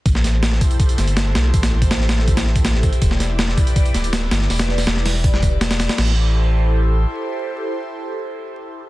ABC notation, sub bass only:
X:1
M:4/4
L:1/8
Q:1/4=162
K:Am
V:1 name="Sub bass" clef=bass
A,,,3 z2 G,,,2 B,,, | A,,,2 A,,,4- A,,, z | E,,,3 z2 D,,,2 G,,, | E,,,2 E,,,4- E,,, z |
A,,,6 z2 | z8 |]